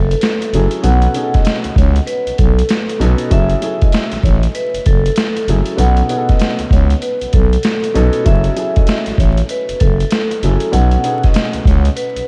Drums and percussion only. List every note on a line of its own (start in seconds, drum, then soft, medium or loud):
0.11 closed hi-hat medium
0.21 snare loud
0.21 closed hi-hat loud
0.42 closed hi-hat medium
0.54 closed hi-hat medium
0.71 closed hi-hat medium
0.84 closed hi-hat loud
1.02 closed hi-hat soft
1.14 closed hi-hat medium
1.34 kick loud
1.34 snare soft
1.34 closed hi-hat soft
1.45 snare loud
1.45 closed hi-hat loud
1.64 closed hi-hat medium
1.76 kick loud
1.76 closed hi-hat medium
1.96 closed hi-hat soft
2.07 closed hi-hat medium
2.27 closed hi-hat medium
2.38 kick medium
2.38 closed hi-hat medium
2.59 closed hi-hat medium
2.69 snare loud
2.69 closed hi-hat loud
2.89 closed hi-hat medium
3.01 closed hi-hat medium
3.18 closed hi-hat medium
3.31 kick loud
3.31 closed hi-hat loud
3.49 closed hi-hat soft
3.62 closed hi-hat medium
3.82 kick loud
3.82 closed hi-hat soft
3.92 snare loud
3.92 closed hi-hat loud
4.12 snare soft
4.12 closed hi-hat medium
4.24 kick medium
4.24 closed hi-hat medium
4.43 closed hi-hat soft
4.55 closed hi-hat medium
4.74 closed hi-hat medium
4.86 kick medium
4.86 closed hi-hat medium
5.06 closed hi-hat medium
5.16 snare loud
5.16 closed hi-hat loud
5.37 closed hi-hat medium
5.48 closed hi-hat medium
5.66 closed hi-hat medium
5.78 closed hi-hat loud
5.97 closed hi-hat soft
6.09 closed hi-hat medium
6.29 kick loud
6.29 snare soft
6.29 closed hi-hat soft
6.39 snare loud
6.39 closed hi-hat loud
6.59 closed hi-hat medium
6.71 kick loud
6.71 closed hi-hat medium
6.90 closed hi-hat medium
7.02 closed hi-hat medium
7.21 closed hi-hat medium
7.33 kick medium
7.33 closed hi-hat medium
7.53 closed hi-hat medium
7.63 snare loud
7.63 closed hi-hat loud
7.84 closed hi-hat medium
7.95 closed hi-hat medium
8.13 closed hi-hat medium
8.26 kick loud
8.26 closed hi-hat loud
8.44 closed hi-hat soft
8.57 closed hi-hat medium
8.76 kick loud
8.76 closed hi-hat soft
8.87 snare loud
8.87 closed hi-hat loud
9.06 snare soft
9.06 closed hi-hat medium
9.18 kick loud
9.18 closed hi-hat medium
9.37 closed hi-hat medium
9.49 closed hi-hat medium
9.69 closed hi-hat medium
9.80 kick medium
9.80 closed hi-hat medium
10.00 closed hi-hat medium
10.11 snare loud
10.11 closed hi-hat loud
10.31 closed hi-hat medium
10.43 closed hi-hat medium
10.60 closed hi-hat medium
10.73 closed hi-hat loud
10.91 closed hi-hat soft
11.04 closed hi-hat medium
11.23 kick loud
11.23 snare soft
11.23 closed hi-hat soft
11.34 snare loud
11.34 closed hi-hat loud
11.53 closed hi-hat medium
11.65 kick loud
11.65 closed hi-hat medium
11.85 closed hi-hat medium
11.97 closed hi-hat medium
12.16 closed hi-hat medium